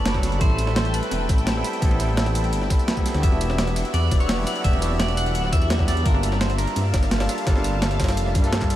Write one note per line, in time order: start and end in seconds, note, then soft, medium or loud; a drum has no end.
0.00 0.39 F#1 medium
0.00 0.13 F#3 loud
0.00 0.13 A3 medium
0.00 0.14 B3 medium
0.00 0.14 C#4 medium
0.00 0.15 D4 medium
0.00 0.16 A4 loud
0.00 0.20 D5 loud
0.00 3.19 A5 medium
0.00 3.19 B5 medium
0.00 0.38 C#6 medium
0.06 snare loud
0.06 closed hi-hat loud
0.06 ride medium
0.13 0.38 F#3 medium
0.13 0.38 B3 medium
0.13 0.39 C#4 medium
0.13 0.39 D4 medium
0.13 0.40 A4 medium
0.13 kick medium
0.13 snare medium
0.23 snare soft
0.23 closed hi-hat medium
0.23 ride medium
0.23 tambourine medium
0.32 closed hi-hat soft
0.38 1.01 A1 loud
0.38 1.52 G3 medium
0.38 1.53 A3 medium
0.38 1.54 C4 medium
0.38 0.75 C5 loud
0.38 8.76 E5 medium
0.38 3.20 G5 medium
0.38 kick loud
0.38 closed hi-hat medium
0.38 ride medium
0.43 1.55 E4 medium
0.43 1.56 A4 loud
0.50 snare medium
0.58 closed hi-hat medium
0.58 ride medium
0.58 tambourine medium
0.67 snare medium
0.67 snare soft
0.76 0.94 C5 medium
0.76 snare loud
0.76 closed hi-hat medium
0.76 ride medium
0.85 snare soft
0.85 closed hi-hat soft
0.94 1.29 B4 medium
0.94 closed hi-hat medium
0.94 ride medium
0.94 tambourine medium
1.03 closed hi-hat soft
1.03 ride soft
1.11 1.27 E1 loud
1.11 snare medium
1.11 closed hi-hat medium
1.11 ride medium
1.29 1.63 A1 loud
1.29 kick loud
1.29 snare medium
1.29 closed hi-hat medium
1.29 ride medium
1.29 tambourine medium
1.38 tambourine soft
1.47 snare loud
1.47 closed hi-hat loud
1.47 ride medium
1.54 1.78 G3 medium
1.54 1.79 B3 medium
1.54 1.80 C4 medium
1.54 1.80 E4 medium
1.54 1.81 A4 medium
1.64 closed hi-hat medium
1.64 ride medium
1.64 tambourine medium
1.73 closed hi-hat soft
1.79 2.54 A1 loud
1.79 2.93 G3 medium
1.79 2.94 B3 medium
1.79 2.95 C4 medium
1.79 kick loud
1.79 closed hi-hat medium
1.79 ride medium
1.84 2.96 E4 medium
1.84 2.97 A4 loud
1.91 snare soft
1.91 ride soft
2.00 snare soft
2.00 closed hi-hat medium
2.00 ride medium
2.00 tambourine medium
2.09 snare soft
2.17 snare loud
2.17 closed hi-hat medium
2.17 ride medium
2.26 snare medium
2.26 snare soft
2.26 closed hi-hat soft
2.35 closed hi-hat medium
2.35 ride medium
2.35 tambourine medium
2.44 closed hi-hat soft
2.53 2.68 G1 medium
2.53 closed hi-hat medium
2.53 ride medium
2.62 snare soft
2.70 kick loud
2.70 snare medium
2.70 closed hi-hat medium
2.70 ride medium
2.70 tambourine medium
2.79 tambourine soft
2.88 snare loud
2.88 closed hi-hat medium
2.88 ride medium
2.95 3.20 G3 medium
2.95 3.20 B3 medium
2.95 3.21 C4 medium
2.95 3.22 E4 medium
2.95 3.22 A4 medium
2.95 kick medium
2.95 tambourine soft
3.06 snare soft
3.06 closed hi-hat medium
3.06 ride medium
3.06 tambourine medium
3.14 3.22 D2 loud
3.14 snare medium
3.14 closed hi-hat soft
3.20 3.84 E1 loud
3.20 4.35 B3 medium
3.20 4.36 D4 medium
3.20 4.34 F#4 medium
3.20 6.03 D5 medium
3.20 3.93 E5 loud
3.20 6.03 F#5 medium
3.20 6.03 E6 loud
3.20 kick loud
3.20 closed hi-hat medium
3.20 ride medium
3.25 4.37 E4 medium
3.25 4.38 G4 loud
3.32 snare soft
3.41 closed hi-hat medium
3.41 ride medium
3.41 tambourine medium
3.50 snare medium
3.50 snare soft
3.58 snare loud
3.58 closed hi-hat medium
3.58 ride medium
3.67 snare soft
3.67 closed hi-hat soft
3.76 closed hi-hat medium
3.76 ride medium
3.76 tambourine medium
3.85 closed hi-hat soft
3.85 ride soft
3.94 4.10 E2 loud
3.94 4.20 D5 loud
3.94 snare soft
3.94 closed hi-hat medium
3.94 ride medium
4.11 4.45 E1 loud
4.11 kick loud
4.11 snare medium
4.11 closed hi-hat medium
4.11 ride medium
4.11 tambourine medium
4.20 4.45 C#5 medium
4.20 tambourine soft
4.29 snare loud
4.29 closed hi-hat medium
4.29 ride medium
4.36 4.61 F#3 medium
4.36 4.62 B3 medium
4.36 4.62 D4 medium
4.36 4.63 E4 medium
4.36 4.63 G4 medium
4.47 4.64 D5 loud
4.47 closed hi-hat medium
4.47 ride medium
4.47 tambourine medium
4.56 closed hi-hat soft
4.61 5.36 E1 loud
4.61 5.77 B3 medium
4.61 5.77 D4 medium
4.61 5.76 F#4 medium
4.61 4.99 E5 loud
4.61 kick loud
4.61 closed hi-hat loud
4.61 ride medium
4.66 5.78 E4 medium
4.66 5.79 G4 loud
4.73 snare soft
4.73 ride soft
4.82 snare soft
4.82 closed hi-hat medium
4.82 ride medium
4.82 tambourine medium
4.91 snare soft
5.00 5.16 D5 loud
5.00 snare loud
5.00 closed hi-hat medium
5.00 ride medium
5.08 snare medium
5.08 snare soft
5.08 closed hi-hat soft
5.17 5.45 F#5 loud
5.17 closed hi-hat medium
5.17 ride medium
5.17 tambourine medium
5.26 closed hi-hat soft
5.35 5.54 D1 medium
5.35 closed hi-hat loud
5.35 ride medium
5.44 5.52 F#5 medium
5.44 snare soft
5.53 6.04 E2 medium
5.53 5.87 E5 loud
5.53 kick loud
5.53 snare medium
5.53 closed hi-hat medium
5.53 ride medium
5.53 tambourine medium
5.62 tambourine soft
5.70 snare loud
5.70 closed hi-hat loud
5.70 ride medium
5.78 6.03 F#3 medium
5.78 6.03 B3 medium
5.78 6.03 D4 medium
5.78 6.04 E4 medium
5.78 6.04 G4 medium
5.78 kick medium
5.78 snare medium
5.88 6.06 D5 loud
5.88 snare soft
5.88 closed hi-hat medium
5.88 ride medium
5.88 tambourine medium
5.97 closed hi-hat soft
6.02 6.66 G1 loud
6.02 7.17 G3 medium
6.02 7.18 A#3 medium
6.02 7.19 D4 medium
6.02 6.40 A#4 loud
6.02 8.76 F5 medium
6.02 8.76 A5 medium
6.02 kick loud
6.02 closed hi-hat loud
6.02 ride medium
6.07 7.19 F4 medium
6.07 7.20 A5 loud
6.14 snare soft
6.23 closed hi-hat medium
6.23 ride medium
6.23 tambourine medium
6.32 snare medium
6.32 snare soft
6.41 6.58 C5 medium
6.41 snare loud
6.41 closed hi-hat loud
6.41 ride medium
6.50 snare soft
6.50 closed hi-hat soft
6.58 7.25 A#4 medium
6.58 closed hi-hat medium
6.58 ride medium
6.58 tambourine medium
6.67 closed hi-hat soft
6.67 ride soft
6.76 6.92 G2 loud
6.76 snare soft
6.76 closed hi-hat loud
6.76 ride medium
6.94 7.28 G1 loud
6.94 kick loud
6.94 snare loud
6.94 closed hi-hat medium
6.94 ride medium
6.94 tambourine medium
7.03 snare soft
7.03 tambourine soft
7.11 snare loud
7.11 closed hi-hat loud
7.11 ride medium
7.19 7.42 G3 medium
7.19 7.44 A#3 medium
7.19 7.45 D4 medium
7.19 7.45 F4 medium
7.19 7.45 A4 medium
7.19 snare loud
7.19 ride medium
7.29 snare soft
7.29 closed hi-hat medium
7.29 ride medium
7.29 tambourine medium
7.38 closed hi-hat soft
7.38 ride medium
7.43 8.19 G1 loud
7.43 8.39 G3 loud
7.43 8.41 A#3 medium
7.43 8.42 D4 medium
7.43 kick loud
7.43 snare loud
7.43 closed hi-hat loud
7.43 ride medium
7.48 8.43 F4 medium
7.48 8.44 A4 loud
7.56 snare soft
7.64 closed hi-hat medium
7.64 ride medium
7.64 tambourine medium
7.73 snare soft
7.82 snare loud
7.82 closed hi-hat loud
7.82 ride medium
7.91 snare medium
7.91 snare soft
7.91 closed hi-hat soft
8.00 kick medium
8.00 snare medium
8.00 closed hi-hat medium
8.00 ride medium
8.00 tambourine medium
8.04 snare medium
8.04 ride medium
8.08 snare loud
8.08 closed hi-hat soft
8.08 ride medium
8.17 8.36 F1 medium
8.17 closed hi-hat loud
8.17 ride medium
8.26 snare soft
8.35 8.76 G2 medium
8.35 kick loud
8.35 snare medium
8.35 closed hi-hat medium
8.35 ride medium
8.35 tambourine medium
8.40 8.76 G3 loud
8.40 8.76 A#3 medium
8.40 8.76 D4 medium
8.40 closed hi-hat soft
8.40 tambourine soft
8.45 8.76 F4 medium
8.45 8.76 A4 loud
8.53 snare loud
8.53 closed hi-hat loud
8.53 ride medium
8.61 kick medium
8.61 snare medium
8.61 clap medium
8.61 tambourine soft
8.70 closed hi-hat medium
8.70 ride medium
8.70 tambourine medium